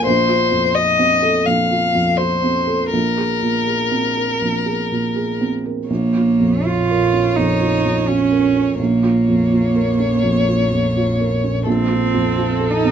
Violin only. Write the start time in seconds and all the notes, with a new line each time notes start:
0.06 C5
0.75 D#5
1.46 F5
2.17 C5
2.91 A#4
5.89 C#5
8.80 C#5
11.68 A4